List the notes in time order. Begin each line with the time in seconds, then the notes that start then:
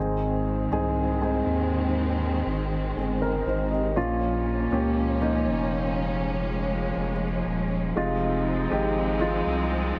Already playing: G#1 G#2 D#3 C4 D#4 G#4
0.00 D#3 G#3
0.72 C2 C4 D#4 G#4
1.21 C4 D#4 G#4
1.46 D#2
2.46 G#1
2.97 G1 C4 G#4
3.22 A#4
3.46 G#1 D#4 C5
3.71 G4 D#5
3.96 A#1 A#2 F3 A#3 C#4 F4
4.71 C#2 A#3 C#4 G4
5.21 A#3 C#4 D#4
5.46 F1
5.97 G#3
6.97 F1
7.46 D#1
7.96 F1 C3 G#3 C4 D#4 F4
8.70 G#1 G#3 D#4 G4
9.20 G#3 D#4 F4
9.46 C2